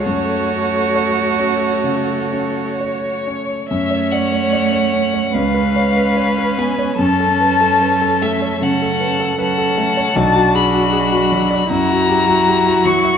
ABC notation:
X:1
M:4/4
L:1/16
Q:1/4=73
K:F#m
V:1 name="Violin"
A12 c4 | e2 f6 ^e6 g2 | a6 e2 f4 f4 | a2 b6 ^a6 c'2 |]
V:2 name="Violin"
c12- c3 z | c8 B8 | A8 A4 A4 | F8 F8 |]
V:3 name="Grand piano"
F,,2 C2 c2 C2 C,2 C2 c2 C2 | F,, c d c d c C c C,, B c B c B B, c | F,, A B A B A A, c C, A B A B A A, c | B,,, F G F G F F, d F,, F =G F G F F, e |]
V:4 name="Viola"
A,12- A,3 z | C8 C8 | C8 C4 C4 | D8 E8 |]
V:5 name="Cello" clef=bass
F12- F2 z2 | A,8 G,8 | F,8 F,4 F,4 | F,8 F,8 |]